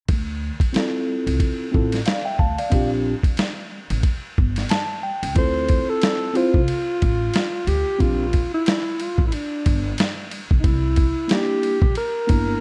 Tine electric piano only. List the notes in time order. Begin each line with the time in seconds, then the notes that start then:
0.73 C4 E4 F4 A4
1.72 C4 E4 F4 A4
2.06 D5 F5
2.25 E5 G5
2.39 F5 A5
2.59 D5 F5
2.70 C4 D4 F4 G4
4.70 A5
5.03 G5
5.35 C4 E4 F4 A4
6.34 C4 E4 F4 C5
7.98 C4 D4 F4 G4
11.28 A#3 D4 E4 G4
12.27 A#3 D4 E4 A#4